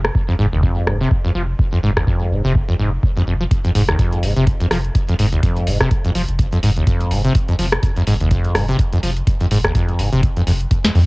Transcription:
0.05 cross-stick
0.15 kick
0.29 acid bass F2
0.39 analog synth bass F1, acid bass G#2
0.53 analog synth bass F1, acid bass D#2
0.63 acid bass F2, kick
0.87 analog synth bass F1, acid bass G#2, cross-stick
1.01 acid bass C3
1.11 kick
1.25 acid bass F2
1.35 analog synth bass F1, acid bass F3
1.59 kick
1.73 acid bass F2
1.83 analog synth bass F1, acid bass G#2
1.97 acid bass D#2, kick, cross-stick
2.07 acid bass F2, kick
2.31 analog synth bass F1, acid bass G#2
2.45 analog synth bass F1, acid bass C3
2.55 kick
2.69 acid bass F2
2.79 analog synth bass F1, acid bass G#2
3.03 kick
3.17 acid bass F2
3.27 analog synth bass F1, acid bass F2
3.41 acid bass F3
3.51 kick, closed hi-hat
3.65 acid bass F2, closed hi-hat
3.75 analog synth bass F1, acid bass G#2, open hi-hat
3.89 acid bass D#2, cross-stick
3.99 acid bass F2, kick, closed hi-hat
4.13 closed hi-hat
4.23 analog synth bass F1, acid bass G#2, open hi-hat
4.37 analog synth bass F1, acid bass C3, closed hi-hat
4.47 kick, closed hi-hat
4.61 acid bass F2, closed hi-hat
4.71 analog synth bass F1, acid bass F3, cross-stick, open hi-hat
4.85 closed hi-hat
4.95 kick, closed hi-hat
5.09 acid bass F2, closed hi-hat
5.19 analog synth bass F1, acid bass G#2, open hi-hat
5.33 acid bass D#2, closed hi-hat
5.43 acid bass F2, kick, closed hi-hat
5.57 closed hi-hat
5.67 analog synth bass F1, acid bass G#2, open hi-hat
5.81 acid bass C3, kick, cross-stick
5.91 kick, closed hi-hat
6.05 acid bass F2, closed hi-hat
6.15 analog synth bass F1, acid bass F3, open hi-hat
6.29 analog synth bass F1, closed hi-hat
6.39 kick, closed hi-hat
6.53 acid bass F2, closed hi-hat
6.63 analog synth bass F1, acid bass G#2, open hi-hat
6.77 acid bass D#2, closed hi-hat
6.87 acid bass F2, kick, closed hi-hat
7.01 closed hi-hat
7.11 analog synth bass F1, acid bass G#2, open hi-hat
7.25 acid bass C3, closed hi-hat
7.35 kick, closed hi-hat
7.49 acid bass F2, closed hi-hat
7.59 analog synth bass F1, acid bass F3, open hi-hat
7.73 cross-stick
7.83 kick, closed hi-hat
7.97 acid bass F2, closed hi-hat
8.07 analog synth bass F1, acid bass G#2, open hi-hat
8.21 analog synth bass F1, acid bass D#2, closed hi-hat
8.31 acid bass F2, kick, closed hi-hat
8.45 closed hi-hat
8.55 analog synth bass F1, acid bass G#2, cross-stick, open hi-hat
8.69 acid bass C3, closed hi-hat
8.79 kick, closed hi-hat
8.93 acid bass F2, closed hi-hat
9.03 analog synth bass F1, acid bass F3, open hi-hat
9.17 closed hi-hat
9.27 kick, closed hi-hat
9.41 acid bass F2, closed hi-hat
9.51 analog synth bass F1, acid bass G#2, open hi-hat
9.65 acid bass D#2, kick, cross-stick
9.75 acid bass F2, kick, closed hi-hat
9.89 closed hi-hat
9.99 analog synth bass F1, acid bass G#2, open hi-hat
10.13 analog synth bass F1, acid bass C3, closed hi-hat
10.23 kick, closed hi-hat
10.37 acid bass F2, closed hi-hat
10.47 analog synth bass F1, acid bass F2, open hi-hat
10.61 closed hi-hat
10.71 kick, closed hi-hat
10.85 acid bass F2, snare, closed hi-hat
10.95 acid bass F2, analog synth bass F2, open hi-hat

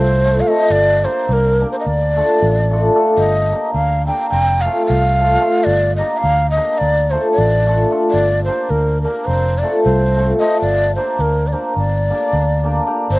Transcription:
Already playing: fingered electric bass C2, ney C5
0.25 hammered dulcimer A3 C4 F4 A4
0.40 ney F5
0.47 hammered dulcimer A3 C4 F4 A4, ney D#5
0.70 fingered electric bass G1, ney D5
1.04 hammered dulcimer A#3 D4 G4 A#4, ney C5
1.29 fingered electric bass C2, ney A#4
1.59 hammered dulcimer A#3 D4 G4 A#4
1.72 ney C5
1.80 ney D#5
1.86 fingered electric bass D2, ney D5
2.16 hammered dulcimer A3 D4 F4 A4
2.42 fingered electric bass A1
2.70 hammered dulcimer A3 D4 F4 A4
2.94 hammered dulcimer A3 D4 F4 A4
3.17 fingered electric bass G1, ney D#5
3.51 hammered dulcimer A#3 D4 G4 A#4
3.73 fingered electric bass D2, ney F5
4.07 hammered dulcimer A#3 D4 G4 A#4, ney G5
4.30 fingered electric bass F1, ney G5
4.61 hammered dulcimer A3, ney F5
4.66 hammered dulcimer C4 F4 A4
4.86 fingered electric bass C2, ney F5
5.19 hammered dulcimer A3 C4 F4 A4
5.39 hammered dulcimer A3 C4 F4 A4
5.64 fingered electric bass G1, ney D5
5.96 hammered dulcimer A#3 D4 G4 A#4, ney D#5
6.18 ney F5
6.24 fingered electric bass D2
6.50 ney D#5
6.55 hammered dulcimer A#3 D4 G4 A#4
6.78 fingered electric bass D2, ney D5
7.11 hammered dulcimer A3 D4 F4 A4, ney C5
7.32 ney D5
7.38 fingered electric bass A1
7.66 hammered dulcimer A3 D4 F4 A4
7.90 hammered dulcimer A3 D4 F4 A4
8.11 fingered electric bass G1, ney D5
8.44 hammered dulcimer A#3 D4, ney C5
8.48 hammered dulcimer G4 A#4
8.70 fingered electric bass D2, ney A#4
9.02 hammered dulcimer A#3 D4 G4, ney A#4
9.06 hammered dulcimer A#4
9.25 fingered electric bass F1, ney C5
9.58 ney D5
9.62 hammered dulcimer A3 C4 F4 A4
9.83 fingered electric bass C2, ney C5
10.17 hammered dulcimer A3 C4 F4 A4
10.38 hammered dulcimer A3 C4 F4 A4, ney D#5
10.61 fingered electric bass G1, ney D5
10.95 hammered dulcimer A#3 D4 G4 A#4, ney C5
11.19 fingered electric bass D2, ney A#4
11.47 ney D5
11.52 hammered dulcimer A#3 D4 G4 A#4, ney C5
11.76 fingered electric bass G1, ney D5
12.10 hammered dulcimer A#3 D4 G4 A#4
12.33 fingered electric bass D2
12.63 hammered dulcimer A#3 D4 G4 A#4
12.86 hammered dulcimer A#3 D4 G4 A#4
13.10 fingered electric bass G1, ney C5

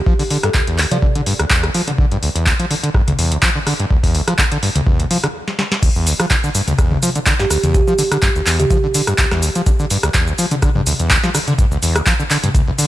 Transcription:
0.06 acid bass F3, kick
0.19 acid bass D3, open hi-hat
0.30 acid bass D3, open hi-hat
0.43 acid bass G2, kalimba A4, cross-stick, closed hi-hat
0.54 acid bass D2, kick, clap
0.67 acid bass E2, closed hi-hat
0.78 acid bass D2, clap, open hi-hat
0.91 acid bass F3, kalimba D5, closed hi-hat, mid tom
1.02 acid bass D3, kick, mid tom
1.15 acid bass D3, closed hi-hat
1.26 acid bass G2, open hi-hat
1.39 acid bass D2, cross-stick, closed hi-hat
1.50 acid bass E2, kick, clap
1.64 acid bass D2, cross-stick, closed hi-hat
1.74 acid bass F3, open hi-hat
1.88 acid bass D3, closed hi-hat, mid tom
1.98 acid bass D3, kick
2.12 acid bass G2, closed hi-hat
2.23 acid bass D2, open hi-hat
2.35 acid bass E2, closed hi-hat
2.46 acid bass D2, kick, clap
2.59 acid bass F3, closed hi-hat
2.71 acid bass D3, open hi-hat
2.83 acid bass D3, closed hi-hat
2.94 acid bass G2, kick, cross-stick
3.07 acid bass D2, closed hi-hat, mid tom
3.18 acid bass E2, open hi-hat
3.31 acid bass D2, closed hi-hat
3.43 acid bass F3, kick, clap
3.56 acid bass D3
3.67 acid bass D3, cross-stick, open hi-hat
3.80 acid bass G2, closed hi-hat
3.91 acid bass D2, kick
4.04 acid bass E2, kick, open hi-hat
4.15 acid bass D2, open hi-hat
4.28 acid bass F3, cross-stick, closed hi-hat
4.39 acid bass D3, kick, clap
4.52 acid bass D3, closed hi-hat
4.63 acid bass G2, open hi-hat
4.76 acid bass D2, closed hi-hat, mid tom
4.87 acid bass E2, kick, mid tom
5.00 acid bass D2, closed hi-hat
5.11 acid bass F3, open hi-hat
5.24 acid bass D3, cross-stick, closed hi-hat
5.48 snare
5.59 snare
5.72 snare
5.83 acid bass D2, kick, closed hi-hat, crash, cabasa
5.96 acid bass E2, cabasa
6.07 acid bass D2, open hi-hat, cabasa
6.20 acid bass F3, cross-stick, closed hi-hat, cabasa
6.31 acid bass D3, kick, clap, closed hi-hat, cabasa
6.44 acid bass D3, cabasa
6.55 acid bass G2, open hi-hat, cabasa
6.68 acid bass D2, closed hi-hat, mid tom, cabasa
6.79 acid bass E2, kick, cross-stick, closed hi-hat, cabasa
6.91 acid bass D2, mid tom
7.03 acid bass F3, open hi-hat, cabasa
7.15 acid bass D3, closed hi-hat, cabasa
7.26 acid bass D3, kick, clap, closed hi-hat, cabasa
7.39 acid bass G2, kalimba G4, snare, cabasa
7.50 acid bass D2, cross-stick, open hi-hat, cabasa
7.63 acid bass E2, closed hi-hat, mid tom, cabasa
7.74 acid bass D2, kalimba G4, kick, closed hi-hat, cabasa
7.88 acid bass F3, kalimba G4, cabasa
7.99 acid bass D3, open hi-hat, cabasa
8.11 acid bass D3, cross-stick, closed hi-hat, cabasa
8.22 acid bass G2, kick, clap, closed hi-hat, cabasa
8.35 acid bass D2, cabasa
8.46 acid bass E2, clap, open hi-hat, cabasa
8.59 acid bass D2, kalimba G4, closed hi-hat, mid tom, cabasa
8.71 acid bass F3, kalimba G4, kick, closed hi-hat, mid tom, cabasa
8.84 acid bass D3
8.94 acid bass D3, open hi-hat, cabasa
9.07 acid bass G2, cross-stick, closed hi-hat, cabasa
9.18 acid bass D2, kick, clap, closed hi-hat, cabasa
9.31 acid bass E2, cross-stick, snare, cabasa
9.43 acid bass D2, open hi-hat, cabasa
9.55 acid bass F3, closed hi-hat, cabasa
9.66 acid bass D3, kick, closed hi-hat, cabasa
9.79 acid bass D3, cabasa
9.90 acid bass G2, open hi-hat, cabasa
10.03 acid bass D2, cross-stick, closed hi-hat, cabasa
10.14 acid bass E2, kick, clap, closed hi-hat, cabasa
10.27 acid bass D2, cabasa
10.38 acid bass F3, open hi-hat, cabasa
10.51 acid bass D3, closed hi-hat, mid tom, cabasa
10.62 acid bass D3, kick, cross-stick, closed hi-hat, cabasa
10.75 acid bass G2, mid tom
10.87 acid bass D2, open hi-hat, cabasa
11.00 acid bass E2, closed hi-hat, cabasa
11.10 acid bass D2, kick, clap, closed hi-hat, cabasa
11.24 acid bass F3, snare, cabasa
11.35 acid bass D3, cross-stick, open hi-hat, cabasa
11.48 acid bass D3, closed hi-hat, mid tom, cabasa
11.59 acid bass G2, kick, closed hi-hat, cabasa
11.72 acid bass D2, cabasa
11.83 acid bass E2, open hi-hat, cabasa
11.96 acid bass D2, cross-stick, closed hi-hat, cabasa
12.06 acid bass F3, kick, clap, closed hi-hat, cabasa
12.20 acid bass D3, cabasa
12.31 acid bass D3, clap, open hi-hat, cabasa
12.44 acid bass G2, closed hi-hat, mid tom, cabasa
12.55 acid bass D2, kick, closed hi-hat, mid tom, cabasa
12.68 acid bass E2
12.79 acid bass D3, open hi-hat, cabasa

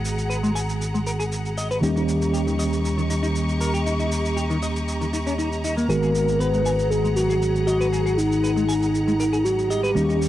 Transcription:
Already playing: fingered electric bass G#1, tine electric piano D#3 G#3 B3 F#4, string section G#4 F#5 A#5
0.05 cabasa
0.18 cabasa
0.30 clean electric guitar B4, cabasa
0.43 clean electric guitar G#3, cabasa
0.55 clean electric guitar G#5, cabasa
0.69 cabasa
0.82 cabasa
0.94 clean electric guitar G#3, cabasa
1.07 clean electric guitar A#4, cabasa
1.20 clean electric guitar G#4, cabasa
1.32 cabasa
1.46 cabasa
1.58 clean electric guitar D#5, cabasa
1.71 clean electric guitar B4, cabasa
1.81 fingered electric bass D#2, tine electric piano D#3 G3 A#3 C#4 G4, clean electric guitar D#4, string section G4 D#5 A#5 C#6, cabasa
1.96 clean electric guitar D#4, cabasa
2.09 cabasa
2.22 cabasa
2.34 clean electric guitar G4, cabasa
2.47 clean electric guitar D#3, cabasa
2.59 clean electric guitar D#5, cabasa
2.73 cabasa
2.85 cabasa
2.98 clean electric guitar D#3, cabasa
3.10 clean electric guitar D#4, cabasa
3.23 clean electric guitar D#4, cabasa
3.36 cabasa
3.49 cabasa
3.60 clean electric guitar A#4, cabasa
3.74 clean electric guitar G4, cabasa
3.86 clean electric guitar D#4, cabasa
3.99 clean electric guitar D#4, cabasa
4.12 cabasa
4.25 cabasa
4.37 clean electric guitar G4, cabasa
4.50 clean electric guitar D#3, cabasa
4.63 clean electric guitar D#5, cabasa
4.76 cabasa
4.88 cabasa
5.01 clean electric guitar D#3, cabasa
5.13 clean electric guitar D#4, cabasa
5.26 clean electric guitar C#4, cabasa
5.38 clean electric guitar D#4, cabasa
5.52 cabasa
5.64 clean electric guitar D#4, cabasa
5.77 clean electric guitar A#3, cabasa
5.88 fingered electric bass G#1, tine electric piano D#3 G#3 B3 F#4, string section G#4 F#5, clean electric guitar G#4, soft synth lead A#4, cabasa
6.03 clean electric guitar G#4, cabasa
6.15 cabasa
6.28 cabasa
6.40 soft synth lead B4, clean electric guitar B4, cabasa
6.54 clean electric guitar G#3, cabasa
6.66 clean electric guitar G#5, cabasa
6.79 cabasa
6.90 soft synth lead G#4, cabasa
7.04 clean electric guitar G#3, cabasa
7.16 soft synth lead F#4, clean electric guitar A#4, cabasa
7.30 clean electric guitar G#4, cabasa
7.42 cabasa
7.56 cabasa
7.66 soft synth lead F#4, clean electric guitar D#5, cabasa
7.81 clean electric guitar B4, cabasa
7.92 soft synth lead F#4, clean electric guitar G#4, cabasa
8.06 clean electric guitar G#4, cabasa
8.17 soft synth lead D#4, cabasa
8.32 cabasa
8.44 clean electric guitar B4, cabasa
8.57 clean electric guitar G#3, cabasa
8.69 clean electric guitar G#5, cabasa
8.82 cabasa
8.95 cabasa
9.07 clean electric guitar G#3, cabasa
9.20 clean electric guitar A#4, cabasa
9.33 clean electric guitar G#4, cabasa
9.44 soft synth lead F#4, cabasa
9.59 cabasa
9.70 soft synth lead G4, clean electric guitar D#5, cabasa
9.83 clean electric guitar B4, cabasa
9.95 fingered electric bass D#2, tine electric piano D#3 G3 A#3 C#4 G4, clean electric guitar D#4, string section G4 D#5 C#6, cabasa
10.09 clean electric guitar D#4, cabasa
10.22 cabasa

